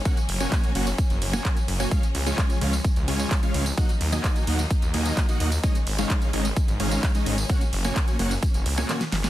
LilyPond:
<<
  \new Staff \with { instrumentName = "Supersaw synth" } { \time 4/4 \key ges \lydian \tempo 4 = 129 <bes des' ges' des'' ges''>16 r8 <bes des' ges' des'' aes''>8. <bes des' ges' des'' ges''>16 r4 <bes des' ges' des'' aes''>16 <bes des' ges' des''>16 r8 <bes des' ges' des'' aes''>16 | <aes des' f' f''>16 r8 <aes des' f' des'' aes''>8. <aes des' f' des'' f''>16 r8. <aes des' f' des'' aes''>8. <aes des' f' des'' f''>8 r16 | <bes ees' ges' ees'' ges''>16 r8 <bes ees' ges' ees'' aes''>8. <bes ees' ges' ees'' ges''>16 r8. <bes ees' ges' ees'' aes''>8. <bes ees' ges' ees'' ges''>8 r16 | <aes des' ees' des'' ees''>16 r8 <aes des' ees' des'' f''>8. <aes des' ees' des'' ees''>16 r8. <aes des' ees' des'' f''>8. <aes des' ees' des'' ees''>8 r16 |
<bes des' ges' des'' ges''>16 r8 <bes des' ges' des'' aes''>8. <bes des' ges' des'' ges''>16 r4 <bes des' ges' des'' aes''>16 <bes des' ges' des'' aes''>16 r8 <bes des' ges' des'' aes''>16 | }
  \new Staff \with { instrumentName = "String section" } { \clef bass \time 4/4 \key ges \lydian << { des'1~ | des'1 | ees'1 | des'1~ |
des'1 | } \\ { <ges bes>1 | <f aes>1 | <ges bes>1 | <ees aes>1 |
<ges bes>1 | } >> }
  \new Staff \with { instrumentName = "Detuned saw bass" } { \clef bass \time 4/4 \key ges \lydian r8 ges,,8 r8 ges,,8 r16 ges,,16 ges,,8 r8 ges,,8 | r8 des,8 r8 des,8 r16 des,16 des,8 r8 des,8 | r8 ees,8 r8 ees,8 r16 ees,16 ees,8 r8 ees,8 | r8 aes,,8 r8 aes,,8 r16 aes,,16 aes,,8 r8 aes,,8 |
r8 ges,,8 r8 ges,,8 r16 ges,,16 des,8 r8 ges,,8 | }
  \new DrumStaff \with { instrumentName = "Drums" } \drummode { \time 4/4 <hh bd tamb>16 <hh tamb>16 <hho cymr>16 <hh tamb>16 <hc hh bd tamb>16 <hh tamb>16 <hho cymr>16 <hh tamb>16 <hh bd tamb>16 <hh tamb>16 <hho cymr>16 <hh tamb>16 <hc hh bd tamb>16 <hh tamb>16 <hho cymr>16 <hh tamb>16 | <hh bd tamb>16 <hh tamb>16 <hho cymr>16 <hh tamb>16 <hc hh bd tamb>16 <hh tamb>16 <hho cymr>16 <hh tamb>16 <hh bd tamb>16 <hh tamb>16 <hho cymr>16 <hh tamb>16 <hc hh bd tamb>16 <hh tamb>16 <hho cymr>16 <hh tamb>16 | <hh bd tamb>16 <hh tamb>16 <hho cymr>16 <hh tamb>16 <hc hh bd tamb>16 <hh tamb>16 <hho cymr>16 <hh tamb>16 <hh bd tamb>16 <hh tamb>16 <hho cymr>16 <hh tamb>16 <hc hh bd tamb>16 <hh tamb>16 <hho cymr>16 <hh tamb>16 | <hh bd tamb>16 <hh tamb>16 <hho cymr>16 <hh tamb>16 <hc hh bd tamb>16 <hh tamb>16 <hho cymr>16 <hh tamb>16 <hh bd tamb>16 <hh tamb>16 <hho cymr>16 <hh tamb>16 <hc hh bd tamb>16 <hh tamb>16 <hho cymr>16 <hh tamb>16 |
<hh bd>16 <hh tamb>16 <hho cymr>16 <hh tamb>16 <hc hh bd tamb>16 <hh tamb>16 <hho cymr>16 <hh tamb>16 <hh bd tamb>16 <hh tamb>16 <hho cymr>16 <hc tamb>16 <hc hh sn tamb>16 <hh sn tamb>16 <hho cymr sn>16 <hh sn tamb>16 | }
>>